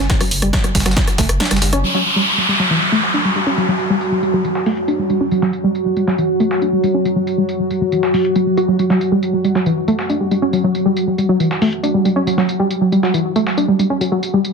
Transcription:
0.10 synth arpeggio sound F#3, kick, snare, closed hi-hat, tambourine
0.20 sub bass F#1, synth arpeggio sound F#3, cross-stick, open hi-hat
0.31 sub bass F#1, open hi-hat, tambourine
0.42 sub bass F#1, synth arpeggio sound G3, cross-stick, closed hi-hat
0.53 kick, snare, closed hi-hat, tambourine
0.64 sub bass F#1, synth arpeggio sound F#3, cross-stick, closed hi-hat
0.75 sub bass F#1, synth arpeggio sound G3, kick, snare, open hi-hat, tambourine
0.80 snare, tambourine
0.86 sub bass F#1, synth arpeggio sound F#3, cross-stick, snare, closed hi-hat, tambourine
0.91 snare, tambourine
0.97 synth arpeggio sound E3, kick, snare, closed hi-hat, tambourine
1.07 sub bass F#1, cross-stick, snare, closed hi-hat
1.18 sub bass F#1, synth arpeggio sound A3, kick, snare, open hi-hat, tambourine
1.29 sub bass F#1, cross-stick, closed hi-hat
1.40 synth arpeggio sound D4, snare, closed hi-hat, tambourine
1.45 snare, tambourine
1.51 sub bass F#1, synth arpeggio sound G3, cross-stick, snare, closed hi-hat, tambourine
1.56 snare, tambourine
1.62 sub bass F#1, synth arpeggio sound G3, snare, open hi-hat, tambourine
1.73 sub bass F#1, synth arpeggio sound C#4, cross-stick, closed hi-hat
1.83 ambient pad F#3 F#4, synth arpeggio sound F#3, tambourine, downlifter
1.94 synth arpeggio sound F#3, snare
2.05 tambourine
2.16 synth arpeggio sound G3
2.27 tambourine
2.38 synth arpeggio sound F#3
2.49 synth arpeggio sound G3
2.60 synth arpeggio sound F#3, snare
2.70 synth arpeggio sound E3, tambourine
2.92 synth arpeggio sound A3, tambourine
3.03 snare
3.14 synth arpeggio sound D4, tambourine
3.25 synth arpeggio sound G3
3.36 synth arpeggio sound G3, tambourine
3.47 synth arpeggio sound C#4
3.57 synth arpeggio sound F#3, tambourine
3.68 synth arpeggio sound F#3
3.79 tambourine
3.90 synth arpeggio sound G3
4.01 tambourine
4.12 synth arpeggio sound F#3
4.23 synth arpeggio sound G3, tambourine
4.34 synth arpeggio sound F#3
4.44 synth arpeggio sound E3, tambourine
4.55 snare
4.66 synth arpeggio sound A3, open hi-hat
4.77 closed hi-hat
4.88 synth arpeggio sound D4, tambourine
4.99 synth arpeggio sound G3
5.10 synth arpeggio sound G3, tambourine
5.21 synth arpeggio sound C#4
5.31 synth arpeggio sound F#3, tambourine
5.42 synth arpeggio sound F#3, snare
5.53 tambourine
5.64 synth arpeggio sound G3
5.75 tambourine
5.86 synth arpeggio sound F#3
5.97 synth arpeggio sound G3, tambourine
6.07 synth arpeggio sound F#3, snare
6.18 synth arpeggio sound E3, tambourine
6.40 synth arpeggio sound A3, tambourine
6.51 snare
6.62 synth arpeggio sound D4, tambourine
6.73 synth arpeggio sound G3
6.84 synth arpeggio sound G3, tambourine
6.94 synth arpeggio sound C#4
7.05 synth arpeggio sound F#3, tambourine
7.16 synth arpeggio sound F#3
7.27 tambourine
7.38 synth arpeggio sound G3
7.49 tambourine
7.60 synth arpeggio sound F#3
7.70 synth arpeggio sound G3, tambourine
7.81 synth arpeggio sound F#3
7.92 synth arpeggio sound E3, tambourine
8.03 snare
8.14 synth arpeggio sound F#3, open hi-hat
8.25 closed hi-hat
8.36 synth arpeggio sound F#3, tambourine
8.47 synth arpeggio sound F#3
8.57 synth arpeggio sound F#4, tambourine
8.68 synth arpeggio sound F#3
8.79 synth arpeggio sound F#3, tambourine
8.90 synth arpeggio sound F#3, snare
9.01 tambourine
9.12 synth arpeggio sound G3
9.23 tambourine
9.34 synth arpeggio sound F#3
9.44 synth arpeggio sound G3, tambourine
9.55 synth arpeggio sound F#3, snare
9.66 synth arpeggio sound E3, tambourine
9.88 synth arpeggio sound A3, tambourine
9.99 snare
10.10 synth arpeggio sound D4, tambourine
10.21 synth arpeggio sound G3
10.31 synth arpeggio sound G3, tambourine
10.42 synth arpeggio sound C#4
10.53 synth arpeggio sound F#3, tambourine
10.64 synth arpeggio sound F#3
10.75 tambourine
10.86 synth arpeggio sound G3
10.96 tambourine
11.07 synth arpeggio sound F#3
11.18 synth arpeggio sound G3, tambourine
11.29 synth arpeggio sound F#3
11.40 synth arpeggio sound E3, tambourine
11.51 snare
11.62 synth arpeggio sound A3, open hi-hat
11.73 closed hi-hat
11.83 synth arpeggio sound D4, tambourine
11.94 synth arpeggio sound G3
12.05 synth arpeggio sound G3, tambourine
12.16 synth arpeggio sound C#4
12.27 synth arpeggio sound F#3, tambourine
12.38 synth arpeggio sound F#3, snare
12.49 tambourine
12.60 synth arpeggio sound G3
12.71 tambourine
12.81 synth arpeggio sound F#3
12.92 synth arpeggio sound G3, tambourine
13.03 synth arpeggio sound F#3, snare
13.14 synth arpeggio sound E3, tambourine
13.36 synth arpeggio sound A3, tambourine
13.47 snare
13.57 synth arpeggio sound D4, tambourine
13.68 synth arpeggio sound G3
13.79 synth arpeggio sound G3, tambourine
13.90 synth arpeggio sound C#4
14.01 synth arpeggio sound F#3, tambourine
14.12 synth arpeggio sound F#3
14.23 tambourine
14.34 synth arpeggio sound G3
14.45 tambourine

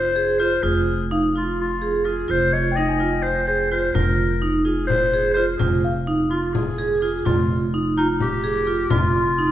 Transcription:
Already playing: upright bass F1, clarinet C5
0.16 vibraphone G#4
0.39 vibraphone F4, clarinet C5
0.63 upright bass F1, vibraphone F4, clarinet G#4
1.11 vibraphone D#4, celesta F5
1.36 vibraphone F4, clarinet F4
1.61 clarinet F4
1.82 vibraphone G#4
2.05 vibraphone F4, clarinet G#4
2.28 upright bass F1, vibraphone F4, clarinet C5
2.53 clarinet C#5, celesta D#5
2.71 celesta G5
2.76 vibraphone D#4, clarinet D#5
2.89 celesta G#5
3.00 vibraphone F4
3.23 clarinet C5
3.47 vibraphone G#4, clarinet C5
3.71 vibraphone F4, clarinet C5
3.94 upright bass F1, vibraphone F4, clarinet A#4, frame drum
4.42 vibraphone D#4
4.65 vibraphone F4, clarinet G#4
4.87 clarinet C5, frame drum
5.14 vibraphone G#4
5.34 vibraphone F4, clarinet C5
5.57 vibraphone F4, clarinet G#4, frame drum
5.61 upright bass F1
5.84 celesta F5
6.07 vibraphone D#4
6.30 clarinet F4, vibraphone F4
6.54 clarinet G#4, frame drum
6.79 vibraphone G#4
7.01 vibraphone F4, clarinet G#4
7.25 upright bass F1, vibraphone F4, clarinet F4, frame drum
7.74 vibraphone D#4
7.97 clarinet D#4, vibraphone F4
8.20 clarinet G4, frame drum
8.44 vibraphone G#4
8.67 vibraphone F4
8.90 upright bass F1, vibraphone F4, clarinet F4, frame drum
9.15 frame drum
9.38 vibraphone D#4

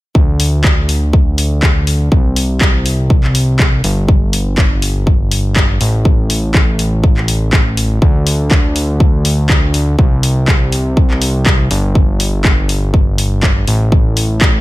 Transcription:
0.15 analog synth bass D2, kick
0.40 open hi-hat
0.64 kick, clap
0.89 open hi-hat
1.13 kick
1.38 open hi-hat
1.63 kick, clap
1.87 open hi-hat
2.12 analog synth bass C2, kick
2.36 open hi-hat
2.61 kick, clap
2.86 open hi-hat
3.10 kick
3.24 clap
3.35 open hi-hat
3.59 kick, clap
3.84 analog synth bass G1, open hi-hat
4.09 kick
4.33 open hi-hat
4.58 kick, clap
4.82 open hi-hat
5.07 kick
5.32 open hi-hat
5.56 kick, clap
5.81 analog synth bass A1, open hi-hat
6.05 kick
6.30 open hi-hat
6.54 kick, clap
6.79 open hi-hat
7.04 kick
7.17 clap
7.28 open hi-hat
7.53 kick, clap
7.77 open hi-hat
8.02 analog synth bass D2, kick
8.27 open hi-hat
8.51 kick, clap
8.76 open hi-hat
9.00 kick
9.25 open hi-hat
9.49 kick, clap
9.74 open hi-hat
9.99 analog synth bass C2, kick
10.23 open hi-hat
10.48 kick, clap
10.72 open hi-hat
10.97 kick
11.11 clap
11.22 open hi-hat
11.46 kick, clap
11.71 analog synth bass G1, open hi-hat
11.95 kick
12.20 open hi-hat
12.45 kick, clap
12.69 open hi-hat
12.94 kick
13.18 open hi-hat
13.43 kick, clap
13.68 analog synth bass A1, open hi-hat
13.92 kick
14.17 open hi-hat
14.41 kick, clap

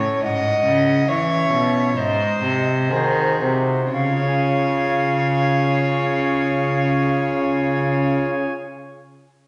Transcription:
Already playing: pipe organ A2 C#4 E4 C#5, cello A2, violin C#5
0.24 cello G#2, pipe organ G#2, violin D#5, recorder F#5
0.65 cello C#3, pipe organ C#3
1.08 pipe organ E3 C#4 E4 C#5, cello E3, violin C#5, recorder E5
1.52 pipe organ B2, cello B2
1.96 cello G#2, pipe organ G#2, violin C5, recorder D#5
2.43 pipe organ C3, cello C3
2.91 cello D#3, pipe organ D#3 D#4 F#4 C5, violin G#4, recorder C5
3.42 pipe organ C3, cello C3
3.92 pipe organ C#3, cello C#3, violin C#5, recorder F5
3.99 pipe organ C#4
4.06 pipe organ F4
4.13 pipe organ G#4
4.20 pipe organ C#5
4.28 pipe organ G#5

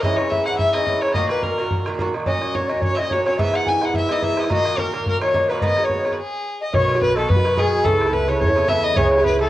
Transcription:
0.01 bouzouki G#2 E3 C#4 E4, fiddle D#5, flute D#5, bodhran
0.11 bodhran
0.16 bouzouki G#2 E3 C#4, fiddle C#5, bodhran
0.21 bouzouki E4
0.30 fiddle E5, flute E5, bodhran
0.45 bouzouki G#2 E3 C#4 E4, fiddle F#5, flute F#5, bodhran
0.52 bodhran
0.57 fiddle E5, flute E5, bodhran
0.73 bouzouki G#2 E3 C#4 E4, fiddle D#5, flute D#5, bodhran
0.86 bouzouki G#2 E3 C#4 E4, bodhran
1.01 bouzouki G#2 E3 C#4 E4, fiddle C#5, flute C#5, bodhran
1.08 bodhran
1.13 bouzouki A#2 D#3 A#3 F#4, fiddle D#5, flute D#5, bodhran
1.22 bodhran
1.28 bouzouki A#2 D#3 A#3 F#4, fiddle B4, flute B4, bodhran
1.42 fiddle A#4, flute A#4, bodhran
1.58 bouzouki A#2 D#3 A#3 F#4, bodhran
1.64 bodhran
1.71 bodhran
1.86 bouzouki A#2 D#3 A#3 F#4, bodhran
1.99 bouzouki A#2 D#3 A#3 F#4, bodhran
2.14 bouzouki A#2 D#3 A#3 F#4, bodhran
2.20 bodhran
2.25 bouzouki A#2 F#3 C#4 F#4, flute D#5, fiddle D#5, bodhran
2.34 bodhran
2.41 bouzouki A#2 F#3 C#4 F#4, bodhran
2.54 flute C#5, fiddle C#5, bodhran
2.68 bouzouki A#2 F#3 C#4 F#4, flute D#5, bodhran
2.76 bodhran
2.81 flute C#5, fiddle C#5, bodhran
2.95 bouzouki A#2 F#3 C#4, flute D#5, fiddle E5, bodhran
2.99 bouzouki F#4, fiddle D#5
3.08 bouzouki A#2 F#3, flute C#5, bodhran
3.12 bouzouki C#4 F#4, fiddle C#5
3.25 bouzouki A#2 F#3 C#4 F#4, flute C#5, fiddle C#5, bodhran
3.33 bodhran
3.37 bouzouki G#2 E3 B3 E4, flute E5, fiddle E5, bodhran
3.47 bodhran
3.53 bouzouki G#2 E3 B3 E4, flute F#5, fiddle F#5, bodhran
3.66 flute G#5, fiddle G#5, bodhran
3.81 bouzouki G#2 E3 B3 E4, flute F#5, fiddle F#5, bodhran
3.88 bodhran
3.94 flute E5, fiddle E5, bodhran
4.09 bouzouki G#2 E3 B3 E4, flute D#5, fiddle D#5, bodhran
4.22 bouzouki G#2 E3 B3 E4, flute E5, fiddle E5, bodhran
4.37 bouzouki G#2 E3 B3 E4, fiddle D#5, bodhran
4.44 bodhran
4.49 bouzouki A#2 D#3 A#3 F#4, flute D#5, fiddle D#5, bodhran
4.57 bodhran
4.64 bouzouki A#2 D#3 A#3 F#4, bodhran
4.78 flute A#4, fiddle A#4, bodhran
4.92 bouzouki A#2 D#3 A#3 F#4, bodhran
5.00 bodhran
5.05 flute A#4, fiddle A#4, bodhran
5.21 bouzouki A#2 D#3 A#3 F#4, flute C#5, fiddle C#5, bodhran
5.34 bouzouki A#2 D#3 A#3 F#4, bodhran
5.49 bouzouki A#2 D#3 A#3 F#4, flute B4, fiddle B4, bodhran
5.54 flute B4, fiddle B4 C#5, bodhran
5.60 bouzouki G#2 D#3 B3 F#4, flute D#5, fiddle D#5, bodhran
5.69 bodhran
5.77 bouzouki G#2 D#3 B3 F#4, bodhran
5.84 flute C#5, fiddle C#5
5.89 bodhran
5.97 flute C#5
6.05 bouzouki G#2 D#3 B3 F#4, bodhran
6.11 fiddle B4, bodhran
6.19 fiddle G#4
6.61 flute D#5, fiddle D#5
6.73 upright bass B1, bouzouki B2 D#3 B3 F#4, flute C#5, fiddle C#5, bodhran
6.89 bodhran
6.95 bouzouki D#3 B3 F#4, bodhran
7.01 flute B4, fiddle B4, bodhran
7.15 bouzouki B2 D#3 B3 F#4, flute A4, fiddle A4, bodhran
7.29 upright bass F#2, fiddle B4, flute B4, bodhran
7.36 bouzouki D#3 B3 F#4
7.44 bouzouki B2 D#3 B3 F#4, bodhran
7.57 bouzouki B2 D#3 B3 F#4, flute G#4, fiddle G#4, bodhran
7.84 upright bass C#2, bouzouki C#3 B3 E4 A4, fiddle A4, flute A4, bodhran
8.01 bodhran
8.06 bouzouki B3 E4 A4, bodhran
8.13 flute B4, fiddle B4, bodhran
8.27 bouzouki C#3 B3 E4 A4, fiddle C#5, bodhran
8.40 upright bass E2, flute C#5, fiddle C#5, bodhran
8.48 bouzouki B3 E4 A4
8.56 bouzouki C#3 B3 E4 A4, bodhran
8.68 bouzouki C#3 B3 E4 A4, flute E5, fiddle E5, bodhran
8.84 fiddle D#5, flute D#5
8.95 upright bass C#2, bouzouki C#3 B3 E4 G#4, flute C#5, fiddle C#5, bodhran
9.12 bodhran
9.18 bouzouki B3 E4 G#4, bodhran
9.24 flute B4, fiddle B4, bodhran
9.39 bouzouki C#3 B3 E4 G#4, fiddle A4, flute A4, bodhran

